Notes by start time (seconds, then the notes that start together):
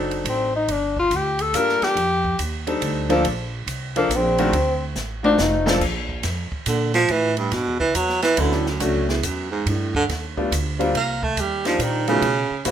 Already playing: F#1 F#3 C4 D4 D#4 A4
0.11 ride
0.24 A1, ride
0.29 C4
0.56 D#4
0.68 G1 D4, ride
0.96 F4, kick
1.11 D2, hi-hat pedal, ride
1.16 G4
1.39 A4, ride
1.53 G2 G3 A#3 D4 F4 A4 A#4, hi-hat pedal, ride
1.69 snare
1.81 G4, muted upright bass stroke, snare, ride
1.96 F2, ride
2.25 kick
2.39 D#2, hi-hat pedal, ride
2.67 G3 C4 D4 D#4 A4, ride
2.81 D2, ride
3.09 F3 A#3 C4 D4 A4, ride
3.24 A#1, ride
3.66 C2, hi-hat pedal, ride
3.96 F3 A#3 C4 D4 A4, ride
4.09 A#1, hi-hat pedal, ride
4.16 C4
4.38 D#3 A3 C4 D4 F#4, ride
4.52 D2, ride
4.95 A1, snare, hi-hat pedal
5.23 A3 C4 D4 D#4 F4 F#4, high tom
5.38 F1 D#4, snare, hi-hat pedal
5.66 F3 A#3 C4 D4 A4, snare
5.81 A#1, kick, crash
6.09 kick
6.23 F2, snare, hi-hat pedal, ride
6.52 muted upright bass stroke, kick
6.66 A#2 D3, hi-hat pedal, ride
6.94 F3, snare, ride
7.08 A2 E3, ride
7.37 G2, ride
7.51 G2 B2, snare, ride
7.67 E2
7.80 C#2 E3, kick
7.94 E2 F#3, hi-hat pedal, ride
8.09 snare
8.22 E3, snare, ride
8.37 D2 D3 F#3 A3 C#4 D4 E4, ride
8.52 A2, snare
8.66 F#2, snare
8.80 C#2 D2 F#3 A3 C#4 D4 F#4, hi-hat pedal, ride
9.09 E2, snare
9.23 E2 F#2, hi-hat pedal, ride
9.51 G#2
9.66 G2 A2, ride
9.95 D3, kick
10.08 D#2, snare, ride
10.37 G3 A3 B3 D4 F4, kick
10.51 D2, hi-hat pedal, ride
10.79 G3 A#3 C4 D4 F4, ride
10.94 C2 A#3, ride
11.23 A3, kick
11.36 D#2 G3, hi-hat pedal, ride
11.65 F3 G3 A#3 C4 D4 D#4, snare, ride
11.79 A#2 D#3, hi-hat pedal, ride
12.07 C#3 F#3 A3 B3 D#4 F4, ride
12.21 B2, ride
12.51 muted upright bass stroke
12.65 A2 G3 A#3 C4 E4 F#4, hi-hat pedal, ride